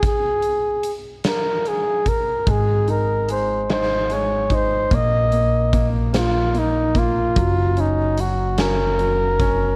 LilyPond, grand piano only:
\new Staff \with { instrumentName = "Grand piano" } { \time 6/8 \key bes \minor \tempo 4. = 49 r2. | aes8 ees'8 aes8 ees'8 aes8 ees'8 | bes8 bes8 bes8 bes8 bes8 bes8 | ges8 des'8 ges8 des'8 ges8 des'8 | }